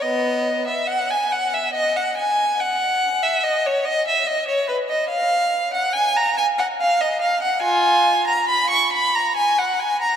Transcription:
\new Staff \with { instrumentName = "Violin" } { \time 3/4 \key dis \phrygian \tempo 4 = 71 <b dis''>8. e''16 fis''16 gis''16 fis''16 e''16 dis''16 fis''16 gis''8 | fis''8. e''16 dis''16 cis''16 dis''16 e''16 dis''16 cis''16 b'16 dis''16 | \key gis \dorian eis''8. fis''16 gis''16 ais''16 gis''16 fis''16 eis''16 dis''16 eis''16 fis''16 | <eis' gis''>8. ais''16 b''16 cis'''16 b''16 ais''16 gis''16 fis''16 gis''16 ais''16 | }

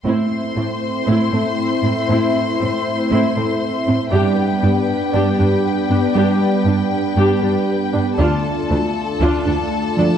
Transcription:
<<
  \new Staff \with { instrumentName = "Violin section" } { \time 4/4 \key a \minor \tempo 4 = 118 <c'' c'''>1~ | <c'' c'''>1 | <b' g''>1~ | <b' g''>1 |
<a' a''>1 | }
  \new Staff \with { instrumentName = "Analog synth pad" } { \time 4/4 \key a \minor <a c' e' e''>1~ | <a c' e' e''>1 | <b d' g' d''>1~ | <b d' g' d''>1 |
<a d' f' d''>1 | }
  \new Staff \with { instrumentName = "Viola section" } { \time 4/4 \key a \minor <c' e'>8 r8 <a c'>8 r8 <c' e'>8 c'8 r8 c'8 | <c' e'>8 r8 <a c'>8 r8 <c' e'>8 c'8 r8 c'8 | <d' g'>8 r8 <b d'>8 r8 <d' g'>8 d'8 r8 d'8 | <d' g'>8 r8 <b d'>8 r8 <d' g'>8 d'8 r8 d'8 |
<d' f'>8 r8 <a d'>8 r8 <d' f'>8 d'8 r8 d'8 | }
  \new Staff \with { instrumentName = "Synth pluck" } { \time 4/4 \key a \minor a8 r8 e'8 r8 a8 a'8 r8 c'8 | a8 r8 e'8 r8 a8 a'8 r8 c'8 | g8 r8 d'8 r8 g8 g'8 r8 b8 | g8 r8 d'8 r8 g8 g'8 r8 b8 |
d8 r8 a8 r8 d8 d'8 r8 f8 | }
  \new Staff \with { instrumentName = "Cello section" } { \clef bass \time 4/4 \key a \minor a,8 r8 a,8 r8 a,8 a,8 r8 a,8 | a,8 r8 a,8 r8 a,8 a,8 r8 a,8 | g,8 r8 g,8 r8 g,8 g,8 r8 g,8 | g,8 r8 g,8 r8 g,8 g,8 r8 g,8 |
d,8 r8 d,8 r8 d,8 d,8 r8 d,8 | }
>>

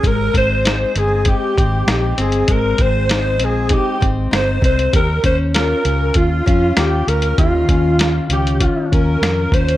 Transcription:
<<
  \new Staff \with { instrumentName = "Alto saxophone" } { \time 4/4 \key aes \major \tempo 4 = 98 bes'8 c''4 aes'8 g'4 g'8 aes'8 | bes'8 c''4 aes'8 g'8 r8 c''8 c''8 | bes'8 c''8 bes'4 f'4 g'8 bes'8 | f'4. g'4 bes'4 c''8 | }
  \new Staff \with { instrumentName = "Nylon-string guitar" } { \time 4/4 \key aes \major aes8 c'8 ees'8 c'8 ees'8 c'8 ees'8 c'8 | aes8 c'8 ees'8 c'8 ees'8 c'8 ees'8 c'8 | g'8 des'8 f'8 des'8 f'8 des'8 f'8 des'8 | <ees g'>8 des'8 f'8 des'8 f'8 des'8 f'8 des'8 | }
  \new Staff \with { instrumentName = "Fingered electric bass" } { \clef bass \time 4/4 \key aes \major aes,,8 aes,,4 g,,8. r16 aes,,8 bes,,8 g,,8 | aes,,8 aes,,4 bes,,8. r16 aes,,8 g,,8 c,8 | ees,8 ees,4 des,8 ees,8 f,8 ees,8 d,8 | ees,8 ees,4 des,8. r16 ees,8 f,8 ees,8 | }
  \new DrumStaff \with { instrumentName = "Drums" } \drummode { \time 4/4 <hh bd>8 <hh bd>8 <hh sn>8 hh8 <hh bd>8 <hh bd>8 <hh sn>8 hh16 hh16 | <hh bd>8 <hh bd>8 <hh sn>8 hh8 <hh bd>8 <hh bd>8 <hh sn>8 <hh bd>16 hh16 | <hh bd>8 <hh bd>8 <hh sn>8 hh8 <hh bd>8 <hh bd>8 <hh sn>8 hh16 hh16 | <hh bd>8 <hh bd>8 <hh sn>8 hh16 hh16 <hh bd>8 <hh bd>8 <hh sn>8 <hh bd>16 hh16 | }
>>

